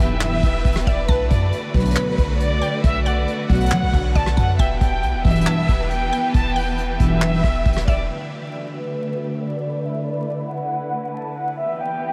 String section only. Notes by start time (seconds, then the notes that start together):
Already playing: E3 B3 G4 B4
1.09 D3 A3 F#4
4.59 E3 B3 G4 B4
8.09 D3 A3 F#4 B4
9.85 E4
11.60 E3 B3 G4 B4